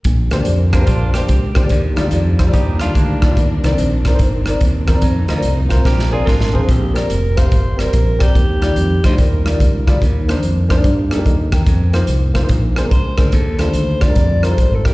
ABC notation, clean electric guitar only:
X:1
M:4/4
L:1/8
Q:"Swing" 1/4=145
K:Bb
V:1 name="Clean electric guitar"
z3 [B,D] [DF] G3 | z4 [EG] [DF] [B,D]2 | z8 | z4 [GB] [F_A] [DF]2 |
z8 | z8 | z8 | z8 |
z8 |]